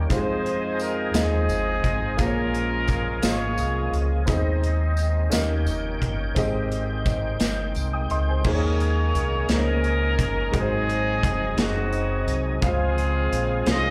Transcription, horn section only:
0, 0, Header, 1, 2, 480
1, 0, Start_track
1, 0, Key_signature, -4, "major"
1, 0, Tempo, 696056
1, 69, Time_signature, 6, 3, 24, 8
1, 9588, End_track
2, 0, Start_track
2, 0, Title_t, "Horn section"
2, 0, Program_c, 0, 61
2, 76, Note_on_c, 0, 72, 73
2, 79, Note_on_c, 0, 63, 55
2, 79, Note_on_c, 0, 68, 60
2, 525, Note_off_c, 0, 72, 0
2, 555, Note_on_c, 0, 70, 77
2, 767, Note_off_c, 0, 63, 0
2, 767, Note_off_c, 0, 68, 0
2, 792, Note_off_c, 0, 70, 0
2, 794, Note_on_c, 0, 68, 81
2, 798, Note_on_c, 0, 60, 51
2, 798, Note_on_c, 0, 63, 52
2, 1486, Note_off_c, 0, 60, 0
2, 1487, Note_off_c, 0, 63, 0
2, 1512, Note_off_c, 0, 68, 0
2, 1512, Note_on_c, 0, 61, 61
2, 1512, Note_on_c, 0, 70, 83
2, 1515, Note_on_c, 0, 65, 60
2, 2203, Note_off_c, 0, 61, 0
2, 2205, Note_off_c, 0, 65, 0
2, 2231, Note_off_c, 0, 70, 0
2, 2239, Note_on_c, 0, 65, 64
2, 2239, Note_on_c, 0, 68, 64
2, 2241, Note_on_c, 0, 73, 92
2, 2748, Note_off_c, 0, 73, 0
2, 2927, Note_off_c, 0, 65, 0
2, 2927, Note_off_c, 0, 68, 0
2, 5839, Note_on_c, 0, 70, 67
2, 5840, Note_on_c, 0, 68, 66
2, 5847, Note_on_c, 0, 73, 83
2, 6527, Note_off_c, 0, 68, 0
2, 6527, Note_off_c, 0, 70, 0
2, 6531, Note_off_c, 0, 73, 0
2, 6559, Note_on_c, 0, 61, 62
2, 6572, Note_on_c, 0, 70, 89
2, 7247, Note_off_c, 0, 61, 0
2, 7281, Note_off_c, 0, 70, 0
2, 7281, Note_on_c, 0, 63, 58
2, 7284, Note_on_c, 0, 60, 61
2, 7287, Note_on_c, 0, 68, 91
2, 7968, Note_off_c, 0, 63, 0
2, 7969, Note_off_c, 0, 60, 0
2, 7971, Note_off_c, 0, 68, 0
2, 8003, Note_on_c, 0, 63, 64
2, 8005, Note_on_c, 0, 60, 63
2, 8009, Note_on_c, 0, 66, 83
2, 8540, Note_off_c, 0, 66, 0
2, 8689, Note_off_c, 0, 63, 0
2, 8690, Note_off_c, 0, 60, 0
2, 8721, Note_on_c, 0, 60, 65
2, 8723, Note_on_c, 0, 65, 63
2, 8726, Note_on_c, 0, 68, 93
2, 9408, Note_off_c, 0, 60, 0
2, 9409, Note_off_c, 0, 65, 0
2, 9410, Note_off_c, 0, 68, 0
2, 9441, Note_on_c, 0, 68, 76
2, 9442, Note_on_c, 0, 75, 106
2, 9443, Note_on_c, 0, 72, 74
2, 9588, Note_off_c, 0, 68, 0
2, 9588, Note_off_c, 0, 72, 0
2, 9588, Note_off_c, 0, 75, 0
2, 9588, End_track
0, 0, End_of_file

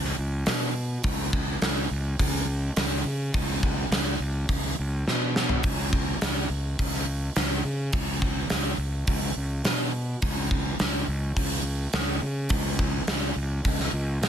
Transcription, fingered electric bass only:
0, 0, Header, 1, 2, 480
1, 0, Start_track
1, 0, Tempo, 573614
1, 867, Time_signature, 4, 2, 24, 8
1, 11955, End_track
2, 0, Start_track
2, 0, Title_t, "Fingered electric bass"
2, 0, Program_c, 0, 33
2, 0, Note_on_c, 0, 37, 95
2, 115, Note_off_c, 0, 37, 0
2, 150, Note_on_c, 0, 37, 78
2, 358, Note_off_c, 0, 37, 0
2, 394, Note_on_c, 0, 47, 90
2, 809, Note_off_c, 0, 47, 0
2, 871, Note_on_c, 0, 37, 84
2, 1287, Note_off_c, 0, 37, 0
2, 1352, Note_on_c, 0, 37, 80
2, 1559, Note_off_c, 0, 37, 0
2, 1598, Note_on_c, 0, 37, 90
2, 1803, Note_off_c, 0, 37, 0
2, 1833, Note_on_c, 0, 37, 95
2, 2249, Note_off_c, 0, 37, 0
2, 2315, Note_on_c, 0, 37, 82
2, 2522, Note_off_c, 0, 37, 0
2, 2549, Note_on_c, 0, 49, 85
2, 2759, Note_off_c, 0, 49, 0
2, 2794, Note_on_c, 0, 37, 84
2, 3210, Note_off_c, 0, 37, 0
2, 3267, Note_on_c, 0, 37, 84
2, 3478, Note_off_c, 0, 37, 0
2, 3513, Note_on_c, 0, 37, 86
2, 3721, Note_off_c, 0, 37, 0
2, 3755, Note_on_c, 0, 37, 81
2, 3963, Note_off_c, 0, 37, 0
2, 4009, Note_on_c, 0, 37, 84
2, 4210, Note_off_c, 0, 37, 0
2, 4248, Note_on_c, 0, 47, 90
2, 4658, Note_off_c, 0, 47, 0
2, 4721, Note_on_c, 0, 37, 88
2, 5135, Note_off_c, 0, 37, 0
2, 5204, Note_on_c, 0, 37, 79
2, 5408, Note_off_c, 0, 37, 0
2, 5436, Note_on_c, 0, 37, 93
2, 5643, Note_off_c, 0, 37, 0
2, 5684, Note_on_c, 0, 37, 86
2, 6097, Note_off_c, 0, 37, 0
2, 6160, Note_on_c, 0, 37, 80
2, 6366, Note_off_c, 0, 37, 0
2, 6395, Note_on_c, 0, 49, 82
2, 6603, Note_off_c, 0, 49, 0
2, 6642, Note_on_c, 0, 37, 89
2, 7055, Note_off_c, 0, 37, 0
2, 7121, Note_on_c, 0, 37, 76
2, 7326, Note_off_c, 0, 37, 0
2, 7345, Note_on_c, 0, 37, 95
2, 7557, Note_off_c, 0, 37, 0
2, 7596, Note_on_c, 0, 37, 95
2, 7803, Note_off_c, 0, 37, 0
2, 7832, Note_on_c, 0, 37, 84
2, 8041, Note_off_c, 0, 37, 0
2, 8069, Note_on_c, 0, 47, 86
2, 8488, Note_off_c, 0, 47, 0
2, 8555, Note_on_c, 0, 37, 86
2, 8971, Note_off_c, 0, 37, 0
2, 9040, Note_on_c, 0, 37, 85
2, 9245, Note_off_c, 0, 37, 0
2, 9268, Note_on_c, 0, 37, 95
2, 9479, Note_off_c, 0, 37, 0
2, 9508, Note_on_c, 0, 37, 88
2, 9926, Note_off_c, 0, 37, 0
2, 9986, Note_on_c, 0, 37, 87
2, 10197, Note_off_c, 0, 37, 0
2, 10225, Note_on_c, 0, 49, 89
2, 10436, Note_off_c, 0, 49, 0
2, 10458, Note_on_c, 0, 37, 91
2, 10880, Note_off_c, 0, 37, 0
2, 10940, Note_on_c, 0, 37, 78
2, 11152, Note_off_c, 0, 37, 0
2, 11179, Note_on_c, 0, 37, 86
2, 11391, Note_off_c, 0, 37, 0
2, 11418, Note_on_c, 0, 37, 86
2, 11631, Note_off_c, 0, 37, 0
2, 11653, Note_on_c, 0, 37, 85
2, 11867, Note_off_c, 0, 37, 0
2, 11896, Note_on_c, 0, 47, 86
2, 11955, Note_off_c, 0, 47, 0
2, 11955, End_track
0, 0, End_of_file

